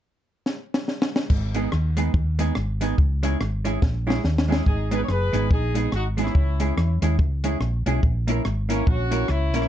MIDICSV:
0, 0, Header, 1, 5, 480
1, 0, Start_track
1, 0, Key_signature, 5, "minor"
1, 0, Tempo, 420168
1, 1491, Time_signature, 4, 2, 24, 8
1, 11060, End_track
2, 0, Start_track
2, 0, Title_t, "Horn section"
2, 0, Program_c, 0, 61
2, 5336, Note_on_c, 0, 68, 94
2, 5339, Note_on_c, 0, 63, 70
2, 5599, Note_off_c, 0, 68, 0
2, 5601, Note_off_c, 0, 63, 0
2, 5618, Note_on_c, 0, 71, 99
2, 5633, Note_on_c, 0, 68, 73
2, 5747, Note_off_c, 0, 71, 0
2, 5751, Note_on_c, 0, 73, 69
2, 5754, Note_off_c, 0, 68, 0
2, 5814, Note_off_c, 0, 73, 0
2, 5817, Note_on_c, 0, 71, 101
2, 5822, Note_on_c, 0, 68, 75
2, 6293, Note_off_c, 0, 68, 0
2, 6294, Note_off_c, 0, 71, 0
2, 6307, Note_on_c, 0, 68, 94
2, 6314, Note_on_c, 0, 63, 76
2, 6746, Note_off_c, 0, 68, 0
2, 6750, Note_off_c, 0, 63, 0
2, 6801, Note_on_c, 0, 66, 87
2, 6806, Note_on_c, 0, 63, 68
2, 6923, Note_off_c, 0, 66, 0
2, 6926, Note_off_c, 0, 63, 0
2, 7089, Note_on_c, 0, 64, 84
2, 7100, Note_on_c, 0, 61, 68
2, 7987, Note_off_c, 0, 64, 0
2, 7992, Note_off_c, 0, 61, 0
2, 9953, Note_on_c, 0, 61, 83
2, 9965, Note_on_c, 0, 58, 73
2, 10126, Note_off_c, 0, 61, 0
2, 10132, Note_off_c, 0, 58, 0
2, 10142, Note_on_c, 0, 66, 107
2, 10152, Note_on_c, 0, 61, 87
2, 10615, Note_off_c, 0, 66, 0
2, 10620, Note_off_c, 0, 61, 0
2, 10622, Note_on_c, 0, 64, 94
2, 10633, Note_on_c, 0, 61, 75
2, 11060, Note_off_c, 0, 61, 0
2, 11060, Note_off_c, 0, 64, 0
2, 11060, End_track
3, 0, Start_track
3, 0, Title_t, "Hollow-body jazz guitar"
3, 0, Program_c, 1, 26
3, 1767, Note_on_c, 1, 56, 84
3, 1777, Note_on_c, 1, 59, 93
3, 1781, Note_on_c, 1, 63, 98
3, 1786, Note_on_c, 1, 68, 92
3, 1920, Note_off_c, 1, 56, 0
3, 1925, Note_off_c, 1, 59, 0
3, 1928, Note_off_c, 1, 63, 0
3, 1930, Note_off_c, 1, 68, 0
3, 2248, Note_on_c, 1, 56, 73
3, 2254, Note_on_c, 1, 59, 83
3, 2262, Note_on_c, 1, 63, 71
3, 2264, Note_on_c, 1, 68, 82
3, 2401, Note_off_c, 1, 56, 0
3, 2404, Note_off_c, 1, 59, 0
3, 2408, Note_off_c, 1, 63, 0
3, 2409, Note_off_c, 1, 68, 0
3, 2727, Note_on_c, 1, 56, 80
3, 2730, Note_on_c, 1, 59, 84
3, 2740, Note_on_c, 1, 63, 91
3, 2742, Note_on_c, 1, 68, 87
3, 2880, Note_off_c, 1, 56, 0
3, 2882, Note_off_c, 1, 59, 0
3, 2887, Note_off_c, 1, 63, 0
3, 2888, Note_off_c, 1, 68, 0
3, 3208, Note_on_c, 1, 56, 82
3, 3217, Note_on_c, 1, 59, 88
3, 3223, Note_on_c, 1, 63, 96
3, 3226, Note_on_c, 1, 68, 98
3, 3361, Note_off_c, 1, 56, 0
3, 3366, Note_off_c, 1, 59, 0
3, 3368, Note_off_c, 1, 63, 0
3, 3370, Note_off_c, 1, 68, 0
3, 3688, Note_on_c, 1, 56, 86
3, 3692, Note_on_c, 1, 61, 85
3, 3699, Note_on_c, 1, 64, 94
3, 3708, Note_on_c, 1, 68, 91
3, 3841, Note_off_c, 1, 56, 0
3, 3843, Note_off_c, 1, 61, 0
3, 3846, Note_off_c, 1, 64, 0
3, 3851, Note_off_c, 1, 68, 0
3, 4165, Note_on_c, 1, 56, 83
3, 4169, Note_on_c, 1, 61, 80
3, 4177, Note_on_c, 1, 64, 85
3, 4185, Note_on_c, 1, 68, 84
3, 4319, Note_off_c, 1, 56, 0
3, 4322, Note_off_c, 1, 61, 0
3, 4325, Note_off_c, 1, 64, 0
3, 4329, Note_off_c, 1, 68, 0
3, 4647, Note_on_c, 1, 56, 85
3, 4652, Note_on_c, 1, 61, 88
3, 4653, Note_on_c, 1, 64, 96
3, 4667, Note_on_c, 1, 68, 92
3, 4800, Note_off_c, 1, 56, 0
3, 4803, Note_off_c, 1, 61, 0
3, 4803, Note_off_c, 1, 64, 0
3, 4811, Note_off_c, 1, 68, 0
3, 5122, Note_on_c, 1, 56, 75
3, 5130, Note_on_c, 1, 61, 85
3, 5138, Note_on_c, 1, 64, 84
3, 5146, Note_on_c, 1, 68, 92
3, 5278, Note_off_c, 1, 56, 0
3, 5282, Note_off_c, 1, 61, 0
3, 5286, Note_off_c, 1, 64, 0
3, 5290, Note_off_c, 1, 68, 0
3, 5611, Note_on_c, 1, 56, 80
3, 5614, Note_on_c, 1, 59, 85
3, 5624, Note_on_c, 1, 63, 82
3, 5632, Note_on_c, 1, 68, 86
3, 5763, Note_off_c, 1, 56, 0
3, 5764, Note_off_c, 1, 59, 0
3, 5769, Note_off_c, 1, 63, 0
3, 5773, Note_off_c, 1, 68, 0
3, 6085, Note_on_c, 1, 56, 75
3, 6092, Note_on_c, 1, 59, 82
3, 6096, Note_on_c, 1, 63, 84
3, 6102, Note_on_c, 1, 68, 87
3, 6240, Note_off_c, 1, 56, 0
3, 6243, Note_off_c, 1, 59, 0
3, 6245, Note_off_c, 1, 63, 0
3, 6248, Note_off_c, 1, 68, 0
3, 6564, Note_on_c, 1, 56, 88
3, 6575, Note_on_c, 1, 59, 83
3, 6578, Note_on_c, 1, 63, 85
3, 6587, Note_on_c, 1, 68, 82
3, 6719, Note_off_c, 1, 56, 0
3, 6725, Note_off_c, 1, 59, 0
3, 6726, Note_off_c, 1, 63, 0
3, 6731, Note_off_c, 1, 68, 0
3, 7052, Note_on_c, 1, 56, 76
3, 7058, Note_on_c, 1, 59, 77
3, 7069, Note_on_c, 1, 63, 85
3, 7074, Note_on_c, 1, 68, 89
3, 7203, Note_off_c, 1, 56, 0
3, 7206, Note_off_c, 1, 59, 0
3, 7212, Note_off_c, 1, 63, 0
3, 7214, Note_off_c, 1, 68, 0
3, 7540, Note_on_c, 1, 56, 78
3, 7541, Note_on_c, 1, 61, 80
3, 7553, Note_on_c, 1, 64, 78
3, 7556, Note_on_c, 1, 68, 88
3, 7687, Note_off_c, 1, 56, 0
3, 7688, Note_off_c, 1, 61, 0
3, 7694, Note_off_c, 1, 64, 0
3, 7695, Note_off_c, 1, 68, 0
3, 8022, Note_on_c, 1, 56, 74
3, 8030, Note_on_c, 1, 61, 70
3, 8036, Note_on_c, 1, 64, 74
3, 8040, Note_on_c, 1, 68, 83
3, 8168, Note_off_c, 1, 56, 0
3, 8172, Note_off_c, 1, 61, 0
3, 8175, Note_off_c, 1, 64, 0
3, 8177, Note_off_c, 1, 68, 0
3, 8498, Note_on_c, 1, 56, 84
3, 8505, Note_on_c, 1, 61, 85
3, 8511, Note_on_c, 1, 64, 93
3, 8513, Note_on_c, 1, 68, 87
3, 8646, Note_off_c, 1, 56, 0
3, 8649, Note_off_c, 1, 61, 0
3, 8652, Note_off_c, 1, 64, 0
3, 8654, Note_off_c, 1, 68, 0
3, 8981, Note_on_c, 1, 56, 81
3, 8988, Note_on_c, 1, 61, 91
3, 8991, Note_on_c, 1, 64, 99
3, 8998, Note_on_c, 1, 68, 106
3, 9127, Note_off_c, 1, 56, 0
3, 9131, Note_off_c, 1, 61, 0
3, 9132, Note_off_c, 1, 64, 0
3, 9136, Note_off_c, 1, 68, 0
3, 9452, Note_on_c, 1, 58, 87
3, 9463, Note_on_c, 1, 61, 92
3, 9470, Note_on_c, 1, 64, 97
3, 9478, Note_on_c, 1, 70, 97
3, 9603, Note_off_c, 1, 58, 0
3, 9608, Note_off_c, 1, 61, 0
3, 9611, Note_off_c, 1, 64, 0
3, 9616, Note_off_c, 1, 70, 0
3, 9926, Note_on_c, 1, 58, 75
3, 9934, Note_on_c, 1, 61, 79
3, 9941, Note_on_c, 1, 64, 86
3, 9945, Note_on_c, 1, 70, 89
3, 10079, Note_off_c, 1, 58, 0
3, 10083, Note_off_c, 1, 61, 0
3, 10087, Note_off_c, 1, 64, 0
3, 10089, Note_off_c, 1, 70, 0
3, 10408, Note_on_c, 1, 58, 78
3, 10412, Note_on_c, 1, 61, 82
3, 10419, Note_on_c, 1, 64, 84
3, 10425, Note_on_c, 1, 70, 85
3, 10560, Note_off_c, 1, 58, 0
3, 10562, Note_off_c, 1, 61, 0
3, 10566, Note_off_c, 1, 64, 0
3, 10568, Note_off_c, 1, 70, 0
3, 10899, Note_on_c, 1, 58, 85
3, 10907, Note_on_c, 1, 61, 93
3, 10910, Note_on_c, 1, 64, 88
3, 10919, Note_on_c, 1, 70, 92
3, 11045, Note_off_c, 1, 58, 0
3, 11049, Note_off_c, 1, 61, 0
3, 11051, Note_off_c, 1, 64, 0
3, 11055, Note_off_c, 1, 70, 0
3, 11060, End_track
4, 0, Start_track
4, 0, Title_t, "Fingered electric bass"
4, 0, Program_c, 2, 33
4, 1484, Note_on_c, 2, 32, 98
4, 1895, Note_off_c, 2, 32, 0
4, 1974, Note_on_c, 2, 39, 86
4, 2381, Note_off_c, 2, 39, 0
4, 2444, Note_on_c, 2, 39, 92
4, 2855, Note_off_c, 2, 39, 0
4, 2927, Note_on_c, 2, 32, 91
4, 3337, Note_off_c, 2, 32, 0
4, 3409, Note_on_c, 2, 37, 110
4, 3818, Note_off_c, 2, 37, 0
4, 3890, Note_on_c, 2, 32, 86
4, 4298, Note_off_c, 2, 32, 0
4, 4370, Note_on_c, 2, 34, 90
4, 4779, Note_off_c, 2, 34, 0
4, 4847, Note_on_c, 2, 39, 92
4, 5257, Note_off_c, 2, 39, 0
4, 5327, Note_on_c, 2, 32, 92
4, 5737, Note_off_c, 2, 32, 0
4, 5804, Note_on_c, 2, 30, 85
4, 6050, Note_off_c, 2, 30, 0
4, 6094, Note_on_c, 2, 32, 86
4, 6261, Note_off_c, 2, 32, 0
4, 6289, Note_on_c, 2, 34, 89
4, 6698, Note_off_c, 2, 34, 0
4, 6763, Note_on_c, 2, 32, 88
4, 7175, Note_off_c, 2, 32, 0
4, 7255, Note_on_c, 2, 37, 104
4, 7662, Note_off_c, 2, 37, 0
4, 7733, Note_on_c, 2, 40, 84
4, 7975, Note_off_c, 2, 40, 0
4, 8018, Note_on_c, 2, 39, 95
4, 8183, Note_off_c, 2, 39, 0
4, 8210, Note_on_c, 2, 37, 84
4, 8619, Note_off_c, 2, 37, 0
4, 8685, Note_on_c, 2, 34, 102
4, 8930, Note_off_c, 2, 34, 0
4, 8978, Note_on_c, 2, 35, 87
4, 9143, Note_off_c, 2, 35, 0
4, 9178, Note_on_c, 2, 34, 101
4, 9583, Note_off_c, 2, 34, 0
4, 9657, Note_on_c, 2, 32, 88
4, 10062, Note_off_c, 2, 32, 0
4, 10134, Note_on_c, 2, 34, 95
4, 10540, Note_off_c, 2, 34, 0
4, 10612, Note_on_c, 2, 37, 99
4, 10902, Note_off_c, 2, 37, 0
4, 10902, Note_on_c, 2, 34, 83
4, 11060, Note_off_c, 2, 34, 0
4, 11060, End_track
5, 0, Start_track
5, 0, Title_t, "Drums"
5, 527, Note_on_c, 9, 38, 55
5, 641, Note_off_c, 9, 38, 0
5, 848, Note_on_c, 9, 38, 83
5, 962, Note_off_c, 9, 38, 0
5, 1006, Note_on_c, 9, 38, 69
5, 1120, Note_off_c, 9, 38, 0
5, 1163, Note_on_c, 9, 38, 95
5, 1278, Note_off_c, 9, 38, 0
5, 1323, Note_on_c, 9, 38, 98
5, 1438, Note_off_c, 9, 38, 0
5, 1482, Note_on_c, 9, 49, 84
5, 1485, Note_on_c, 9, 36, 106
5, 1596, Note_off_c, 9, 49, 0
5, 1599, Note_off_c, 9, 36, 0
5, 1766, Note_on_c, 9, 42, 87
5, 1880, Note_off_c, 9, 42, 0
5, 1966, Note_on_c, 9, 37, 99
5, 2080, Note_off_c, 9, 37, 0
5, 2247, Note_on_c, 9, 42, 90
5, 2362, Note_off_c, 9, 42, 0
5, 2445, Note_on_c, 9, 36, 106
5, 2559, Note_off_c, 9, 36, 0
5, 2729, Note_on_c, 9, 42, 101
5, 2844, Note_off_c, 9, 42, 0
5, 2916, Note_on_c, 9, 37, 106
5, 3030, Note_off_c, 9, 37, 0
5, 3211, Note_on_c, 9, 42, 88
5, 3325, Note_off_c, 9, 42, 0
5, 3407, Note_on_c, 9, 36, 99
5, 3521, Note_off_c, 9, 36, 0
5, 3693, Note_on_c, 9, 42, 90
5, 3807, Note_off_c, 9, 42, 0
5, 3891, Note_on_c, 9, 37, 102
5, 4005, Note_off_c, 9, 37, 0
5, 4171, Note_on_c, 9, 42, 89
5, 4174, Note_on_c, 9, 37, 62
5, 4286, Note_off_c, 9, 42, 0
5, 4288, Note_off_c, 9, 37, 0
5, 4367, Note_on_c, 9, 36, 111
5, 4367, Note_on_c, 9, 38, 58
5, 4481, Note_off_c, 9, 36, 0
5, 4482, Note_off_c, 9, 38, 0
5, 4687, Note_on_c, 9, 38, 81
5, 4801, Note_off_c, 9, 38, 0
5, 4847, Note_on_c, 9, 38, 68
5, 4961, Note_off_c, 9, 38, 0
5, 5009, Note_on_c, 9, 38, 91
5, 5123, Note_off_c, 9, 38, 0
5, 5168, Note_on_c, 9, 38, 93
5, 5282, Note_off_c, 9, 38, 0
5, 5328, Note_on_c, 9, 36, 95
5, 5442, Note_off_c, 9, 36, 0
5, 5614, Note_on_c, 9, 42, 87
5, 5729, Note_off_c, 9, 42, 0
5, 5809, Note_on_c, 9, 37, 95
5, 5923, Note_off_c, 9, 37, 0
5, 6095, Note_on_c, 9, 42, 88
5, 6210, Note_off_c, 9, 42, 0
5, 6291, Note_on_c, 9, 36, 112
5, 6405, Note_off_c, 9, 36, 0
5, 6572, Note_on_c, 9, 42, 97
5, 6686, Note_off_c, 9, 42, 0
5, 6766, Note_on_c, 9, 37, 100
5, 6880, Note_off_c, 9, 37, 0
5, 7058, Note_on_c, 9, 42, 86
5, 7160, Note_on_c, 9, 37, 65
5, 7172, Note_off_c, 9, 42, 0
5, 7254, Note_on_c, 9, 36, 96
5, 7275, Note_off_c, 9, 37, 0
5, 7368, Note_off_c, 9, 36, 0
5, 7538, Note_on_c, 9, 42, 88
5, 7652, Note_off_c, 9, 42, 0
5, 7740, Note_on_c, 9, 37, 105
5, 7855, Note_off_c, 9, 37, 0
5, 8022, Note_on_c, 9, 42, 89
5, 8024, Note_on_c, 9, 37, 60
5, 8136, Note_off_c, 9, 42, 0
5, 8139, Note_off_c, 9, 37, 0
5, 8213, Note_on_c, 9, 36, 106
5, 8328, Note_off_c, 9, 36, 0
5, 8498, Note_on_c, 9, 42, 97
5, 8612, Note_off_c, 9, 42, 0
5, 8689, Note_on_c, 9, 37, 96
5, 8803, Note_off_c, 9, 37, 0
5, 8982, Note_on_c, 9, 42, 86
5, 9097, Note_off_c, 9, 42, 0
5, 9174, Note_on_c, 9, 36, 94
5, 9288, Note_off_c, 9, 36, 0
5, 9457, Note_on_c, 9, 42, 90
5, 9571, Note_off_c, 9, 42, 0
5, 9653, Note_on_c, 9, 37, 100
5, 9767, Note_off_c, 9, 37, 0
5, 9937, Note_on_c, 9, 42, 87
5, 10051, Note_off_c, 9, 42, 0
5, 10133, Note_on_c, 9, 36, 111
5, 10247, Note_off_c, 9, 36, 0
5, 10414, Note_on_c, 9, 42, 99
5, 10528, Note_off_c, 9, 42, 0
5, 10605, Note_on_c, 9, 37, 101
5, 10719, Note_off_c, 9, 37, 0
5, 10897, Note_on_c, 9, 42, 86
5, 10990, Note_on_c, 9, 37, 62
5, 11011, Note_off_c, 9, 42, 0
5, 11060, Note_off_c, 9, 37, 0
5, 11060, End_track
0, 0, End_of_file